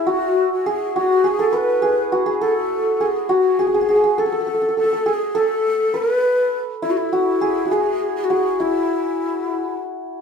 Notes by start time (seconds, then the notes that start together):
Already playing: E4 G#4
0.07 F#4
0.53 F#4
0.66 G#4
0.96 F#4
1.24 G#4
1.39 A4
1.53 B4
1.57 B4
1.82 G#4
2.12 F#4
2.26 G#4
2.41 A4
3.01 G#4 A4
3.06 G#4
3.29 F#4
3.59 G#4
3.67 G#4
3.74 G#4
3.81 G#4
3.89 G#4
3.96 G#4
4.04 G#4
4.18 A4
4.26 A4
4.32 A4
4.41 A4
4.47 A4
4.54 A4
4.62 A4
4.69 A4
4.77 A4
4.84 A4
4.93 A4
5.06 G#4 A4
5.14 G#4
5.35 A4
5.94 B4
6.82 E4
6.91 F#4
6.97 E4
7.13 F#4
7.41 G#4
7.65 F#4
7.71 G#4
8.16 G#4
8.24 F#4
8.30 F#4 G#4
8.60 E4